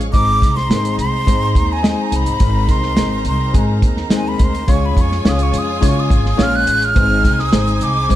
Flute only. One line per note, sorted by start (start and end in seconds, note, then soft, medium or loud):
0.13 0.58 D6 loud
0.56 0.99 C6 loud
1.00 1.74 C6 medium
1.73 2.17 G#5 medium
2.16 2.73 B5 loud
2.71 3.27 C6 loud
3.28 3.54 C6 medium
4.16 4.30 G#5 medium
4.28 4.45 B5 medium
4.44 4.73 C6 medium
4.71 4.87 C#6 loud
4.86 5.03 B5 medium
5.01 5.30 C#6 medium
5.29 5.44 D#6 loud
5.43 5.60 C#6 medium
5.58 5.88 D#6 loud
5.86 6.01 C#6 loud
6.00 6.27 D#6 medium
6.29 6.44 D#6 medium
6.43 6.57 F6 loud
6.55 6.86 F#6 loud
6.85 7.41 F6 loud
7.40 7.85 D#6 loud
7.83 8.15 D6 loud